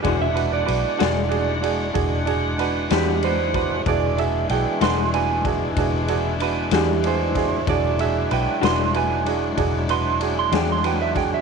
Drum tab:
RD |xxxxxxxxxxxx|xxxxxxxxxxxx|xxxxxxxxxxxx|
SD |---o-----o--|---o-----o-o|---o-----o-o|
BD |o-----o----o|o----oo----o|o-----o----o|